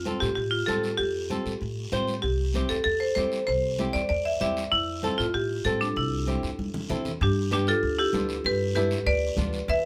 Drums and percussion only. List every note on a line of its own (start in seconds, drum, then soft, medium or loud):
0.06 high conga medium
0.06 short guiro medium
0.22 short guiro medium
0.37 high conga soft
0.37 long guiro medium
0.68 high conga medium
0.68 short guiro medium
0.83 short guiro medium
0.99 high conga soft
0.99 long guiro medium
1.30 high conga medium
1.30 short guiro medium
1.46 short guiro medium
1.61 high conga soft
1.61 long guiro medium
1.92 high conga medium
1.92 short guiro medium
2.08 short guiro medium
2.23 high conga soft
2.23 long guiro medium
2.54 high conga medium
2.54 short guiro medium
2.69 short guiro medium
2.85 high conga soft
2.85 long guiro medium
3.16 high conga medium
3.16 short guiro medium
3.32 short guiro medium
3.47 high conga soft
3.47 long guiro medium
3.78 high conga medium
3.78 short guiro medium
3.94 short guiro medium
4.10 high conga soft
4.10 long guiro medium
4.41 high conga medium
4.41 short guiro medium
4.57 short guiro medium
4.72 high conga soft
4.72 long guiro medium
5.03 high conga medium
5.03 short guiro medium
5.19 short guiro medium
5.34 high conga soft
5.34 long guiro medium
5.65 high conga medium
5.65 short guiro medium
5.81 short guiro medium
5.96 high conga soft
5.96 long guiro medium
6.27 high conga medium
6.27 short guiro medium
6.43 short guiro medium
6.59 high conga medium
6.59 long guiro medium
6.74 low conga medium
6.89 low conga medium
6.89 short guiro medium
7.05 low conga medium
7.05 short guiro medium
7.21 long guiro medium
7.51 high conga medium
7.51 short guiro medium
7.67 short guiro medium
7.83 long guiro medium
8.13 high conga medium
8.13 short guiro medium
8.29 short guiro medium
8.44 long guiro medium
8.75 high conga medium
8.75 short guiro medium
8.91 short guiro medium
9.07 long guiro medium
9.37 high conga medium
9.37 low conga medium
9.37 short guiro medium
9.53 short guiro medium
9.68 long guiro medium